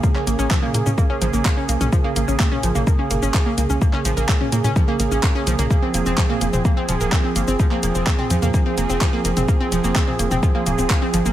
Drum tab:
HH |--x---x---x---xx|--x---x---x---x-|--x---x---x---xx|--x---x---x---x-|
SH |x-xxx-xxx-xxx-xx|x-xxx-xxx-xxx-xx|x-xxx-xxx-xxx-xx|x-xxx-xxx-xxx-xx|
CP |-x--x-------x---|----x-------x---|-x--x-------x---|----x-------x---|
T2 |-----o-o-------o|-----o-o--o-----|-----o-o-------o|-----o-o--o-----|
BD |o---o---o---o---|o---o---o---o---|o---o---o---o---|o---o---o---o---|

HH |--x---x---x---xx|--x---x---x---x-|
SH |x-xxx-xxx-xxx-xx|x-xxx-xxx-xxx-xx|
CP |-x--x-------x---|----x-------x---|
T2 |-----o-o-------o|-----o-o--o-----|
BD |o---o---o---o---|o---o---o---o---|